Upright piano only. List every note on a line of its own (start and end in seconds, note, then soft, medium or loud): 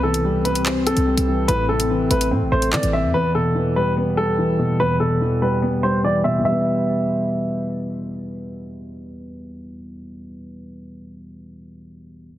0.03 0.42 A4 medium
0.45 0.61 B4 medium
0.87 1.45 A4 medium
1.48 1.64 B4 loud
1.69 2.08 A4 medium
2.11 2.26 B4 medium
2.52 2.68 C5 medium
2.73 2.89 D5 medium
2.93 3.09 E5 medium
3.14 3.30 B4 medium
3.35 3.74 A4 medium
3.76 3.92 B4 medium
4.17 4.76 A4 medium
4.80 4.95 B4 loud
5.00 5.39 A4 medium
5.42 5.58 B4 medium
5.83 5.99 C5 medium
6.04 6.20 D5 medium
6.24 6.40 E5 medium
6.45 7.65 E5 medium